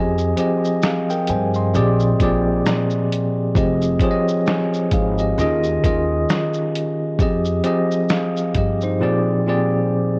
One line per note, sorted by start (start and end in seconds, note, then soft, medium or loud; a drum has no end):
0.00 0.32 F2 loud
0.00 0.26 F3 medium
0.00 0.26 C4 medium
0.00 0.27 G4 medium
0.00 0.27 G#4 medium
0.00 0.16 C5 soft
0.00 0.28 D#5 medium
0.00 0.16 G#5 medium
0.18 shaker soft
0.37 1.68 F3 medium
0.37 1.68 C4 medium
0.37 0.83 G4 medium
0.37 0.83 G#4 medium
0.37 0.84 D#5 medium
0.37 closed hi-hat medium
0.37 shaker soft
0.65 shaker soft
0.82 1.08 G#4 medium
0.82 1.08 F5 medium
0.82 snare loud
0.82 shaker medium
1.10 1.28 A#4 soft
1.10 1.28 G5 medium
1.10 shaker medium
1.27 1.76 G2 medium
1.27 1.54 C5 medium
1.27 1.54 G#5 medium
1.27 closed hi-hat medium
1.27 shaker soft
1.54 1.98 D#5 medium
1.54 1.98 C6 medium
1.54 shaker soft
1.74 2.14 A#1 loud
1.74 2.11 A#2 medium
1.74 2.12 F3 medium
1.74 2.12 C4 medium
1.74 2.12 G4 medium
1.74 2.12 G#4 medium
1.74 2.13 D5 loud
1.74 shaker medium
2.00 shaker soft
2.20 2.60 A#1 medium
2.20 3.18 A#2 medium
2.20 3.18 F3 medium
2.20 3.19 C4 medium
2.20 3.19 G4 medium
2.20 3.19 G#4 medium
2.20 3.19 D5 medium
2.20 kick medium
2.20 closed hi-hat medium
2.20 shaker soft
2.66 snare loud
2.66 shaker medium
2.90 shaker soft
3.12 closed hi-hat medium
3.12 shaker soft
3.55 3.96 F1 loud
3.55 3.90 F3 medium
3.55 3.90 C4 medium
3.55 3.90 G4 medium
3.55 3.91 G#4 medium
3.55 3.91 D#5 medium
3.55 kick loud
3.55 shaker medium
3.82 shaker soft
4.00 5.32 F3 medium
4.00 5.32 C4 medium
4.00 4.47 G4 medium
4.00 4.48 G#4 medium
4.00 kick medium
4.00 closed hi-hat medium
4.00 shaker soft
4.05 4.10 C#5 medium
4.11 4.51 D#5 medium
4.28 shaker soft
4.46 4.90 C5 medium
4.46 4.90 G#5 medium
4.46 snare loud
4.46 shaker medium
4.74 shaker soft
4.91 5.32 G#1 medium
4.91 5.18 G#4 medium
4.91 5.17 F5 medium
4.91 kick medium
4.91 closed hi-hat medium
4.91 shaker soft
5.18 5.62 G4 soft
5.18 5.40 D#5 medium
5.18 shaker soft
5.38 5.78 D#2 loud
5.38 5.75 D#3 medium
5.38 5.76 C#4 medium
5.38 5.76 F4 medium
5.38 5.76 G#4 medium
5.38 5.77 D#5 loud
5.38 shaker medium
5.63 shaker soft
5.83 6.24 D#2 medium
5.83 6.81 D#3 medium
5.83 6.81 C#4 medium
5.83 6.82 F4 medium
5.83 6.82 G#4 medium
5.83 6.83 D#5 medium
5.83 kick medium
5.83 closed hi-hat medium
5.83 shaker soft
6.29 snare loud
6.29 shaker medium
6.53 shaker soft
6.75 closed hi-hat medium
6.75 shaker soft
7.19 7.59 F2 medium
7.19 7.53 F3 medium
7.19 7.54 C4 medium
7.19 7.54 G4 medium
7.19 7.55 G#4 medium
7.19 7.55 D#5 medium
7.19 kick loud
7.19 shaker medium
7.45 shaker medium
7.64 8.95 F3 medium
7.64 8.95 C4 medium
7.64 8.10 G4 medium
7.64 8.11 G#4 medium
7.64 8.11 D#5 medium
7.64 closed hi-hat medium
7.64 shaker soft
7.91 shaker soft
8.09 8.54 G#4 medium
8.09 8.54 F5 medium
8.09 snare loud
8.09 shaker medium
8.37 shaker soft
8.55 9.01 G2 medium
8.55 8.82 G4 medium
8.55 8.81 D#5 medium
8.55 kick medium
8.55 closed hi-hat medium
8.55 shaker soft
8.81 9.26 D#4 medium
8.81 9.26 C5 medium
8.81 shaker soft
9.00 9.38 A#2 medium
9.00 9.38 F3 medium
9.00 9.39 C4 medium
9.00 9.39 G4 medium
9.00 9.39 G#4 medium
9.00 9.40 D5 loud
9.47 10.19 A#2 medium
9.47 10.19 F3 medium
9.47 10.19 C4 medium
9.47 10.19 G4 medium
9.47 10.19 G#4 medium
9.47 10.19 D5 medium